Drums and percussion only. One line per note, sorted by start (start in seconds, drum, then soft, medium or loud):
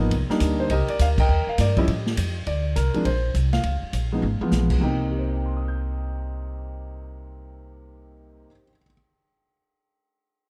0.11 kick soft
0.11 ride medium
0.30 snare soft
0.40 kick soft
0.40 hi-hat pedal medium
0.40 ride medium
0.70 kick soft
0.70 ride medium
0.88 ride soft
0.99 kick soft
0.99 hi-hat pedal medium
0.99 ride medium
1.18 kick medium
1.18 crash medium
1.58 kick soft
1.58 snare soft
1.58 hi-hat pedal medium
1.58 ride medium
1.77 kick medium
1.77 ride soft
1.88 kick soft
1.88 ride medium
2.06 snare medium
2.17 kick soft
2.17 hi-hat pedal medium
2.17 ride medium
2.46 kick soft
2.46 ride medium
2.76 kick soft
2.76 hi-hat pedal medium
2.76 ride medium
2.94 ride soft
3.05 kick soft
3.05 ride medium
3.35 kick soft
3.35 hi-hat pedal medium
3.35 ride medium
3.53 snare medium
3.53 ride soft
3.63 kick soft
3.63 ride medium
3.93 kick soft
3.93 hi-hat pedal medium
3.93 ride medium
4.23 high tom soft
4.41 mid tom medium
4.51 snare medium
4.51 hi-hat pedal medium
4.70 kick medium
4.70 crash medium